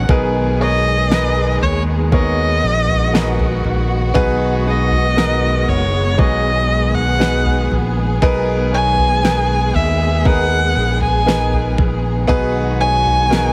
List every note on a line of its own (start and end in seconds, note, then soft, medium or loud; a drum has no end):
0.00 12.25 D#3 medium
0.00 0.09 B3 medium
0.00 0.09 D#4 medium
0.00 0.11 F#4 medium
0.00 0.09 G#4 medium
0.00 0.10 A#4 medium
0.09 1.57 B1 loud
0.09 1.58 B2 medium
0.09 4.13 G#3 medium
0.09 0.57 B3 medium
0.09 13.53 B3 medium
0.09 0.57 D#4 medium
0.09 0.57 G#4 medium
0.09 2.11 G#4 medium
0.09 0.58 A#4 medium
0.09 0.58 B4 loud
0.09 kick loud
0.09 floor tom loud
0.60 1.08 B3 medium
0.60 1.08 D#4 medium
0.60 1.08 G#4 medium
0.60 1.08 A#4 medium
0.60 1.09 C#5 medium
0.60 1.58 D#5 loud
1.10 2.07 B3 medium
1.10 2.07 D#4 medium
1.10 2.07 G#4 medium
1.10 2.07 A#4 medium
1.10 2.08 B4 medium
1.10 snare loud
1.62 2.60 D#2 medium
1.62 1.82 C#5 medium
1.62 floor tom medium
2.12 3.08 B3 medium
2.12 3.09 D#4 medium
2.12 6.15 F#4 medium
2.12 3.09 G#4 medium
2.12 3.09 A#4 medium
2.12 3.09 C#5 medium
2.12 3.62 D#5 loud
2.12 kick loud
2.12 floor tom medium
2.64 3.61 A#1 medium
2.88 floor tom medium
3.13 4.10 B3 medium
3.13 4.10 D#4 medium
3.13 4.10 G#4 medium
3.13 4.10 A#4 medium
3.13 4.11 B4 medium
3.13 snare loud
3.39 floor tom medium
3.64 4.12 A#1 medium
3.64 floor tom medium
4.14 5.64 B1 loud
4.14 8.18 G#3 medium
4.14 4.63 B3 loud
4.14 4.63 D#4 loud
4.14 4.63 F#4 loud
4.14 4.63 G#4 loud
4.14 4.64 B4 loud
4.14 kick loud
4.14 floor tom loud
4.66 5.14 B3 medium
4.66 5.14 D#4 medium
4.66 5.15 F#4 medium
4.66 5.15 G#4 medium
4.66 5.15 B4 medium
4.66 5.70 D#5 loud
4.91 floor tom medium
5.16 6.13 B3 medium
5.16 6.13 D#4 medium
5.16 6.14 F#4 medium
5.16 6.14 G#4 medium
5.16 6.14 A#4 medium
5.16 snare loud
5.68 6.16 F#1 medium
5.68 6.20 C#5 medium
5.68 floor tom medium
6.18 7.67 B1 medium
6.18 7.15 B3 medium
6.18 7.15 D#4 medium
6.18 7.15 F#4 medium
6.18 7.15 G#4 medium
6.18 12.25 G#4 medium
6.18 7.16 C#5 medium
6.18 6.96 D#5 loud
6.18 kick loud
6.18 floor tom medium
6.95 7.71 F#5 loud
6.95 floor tom medium
7.19 8.16 B3 medium
7.19 8.16 D#4 medium
7.19 8.17 F#4 medium
7.19 8.17 G#4 medium
7.19 8.17 B4 medium
7.19 snare loud
7.46 floor tom medium
7.71 8.19 A#1 medium
7.71 floor tom medium
8.22 9.71 B1 loud
8.22 9.71 B2 medium
8.22 12.25 G#3 medium
8.22 8.70 B3 loud
8.22 8.71 D#4 loud
8.22 8.71 G#4 loud
8.22 8.71 A#4 loud
8.22 8.71 B4 loud
8.22 kick medium
8.22 floor tom loud
8.73 9.21 B3 medium
8.73 9.21 D#4 medium
8.73 9.22 G#4 medium
8.73 9.22 A#4 medium
8.73 9.22 C#5 medium
8.73 9.77 G#5 loud
8.98 floor tom medium
9.23 10.20 D#3 medium
9.23 10.20 B3 medium
9.23 10.21 G#4 medium
9.23 10.21 A#4 medium
9.23 10.21 B4 medium
9.23 snare loud
9.74 10.73 D#2 medium
9.74 10.27 E5 medium
9.74 floor tom medium
10.25 11.22 B3 medium
10.25 11.22 D#4 medium
10.25 11.22 G#4 medium
10.25 11.22 A#4 medium
10.25 11.23 B4 medium
10.25 11.02 F#5 loud
10.25 kick loud
10.25 floor tom medium
10.76 11.74 A#1 medium
11.01 11.74 G#5 medium
11.01 floor tom medium
11.26 12.23 B3 medium
11.26 12.23 D#4 medium
11.26 12.23 G#4 medium
11.26 12.24 A#4 medium
11.26 12.24 B4 medium
11.26 snare loud
11.53 floor tom medium
11.78 12.26 A#1 medium
11.78 kick medium
11.78 floor tom medium
12.27 13.53 B1 loud
12.27 13.53 D#3 medium
12.27 13.53 G#3 medium
12.27 12.77 B3 loud
12.27 12.77 D#4 loud
12.27 12.77 F#4 loud
12.27 13.53 F#4 medium
12.27 12.77 G#4 loud
12.27 12.77 B4 loud
12.27 kick loud
12.27 floor tom loud
12.80 13.28 B3 medium
12.80 13.28 D#4 medium
12.80 13.29 F#4 medium
12.80 13.29 G#4 medium
12.80 13.29 C#5 medium
12.80 13.53 G#5 loud
13.06 floor tom medium
13.29 13.53 B3 medium
13.29 13.53 D#4 medium
13.29 13.53 F#4 medium
13.29 13.53 G#4 medium
13.29 13.53 A#4 medium
13.29 snare loud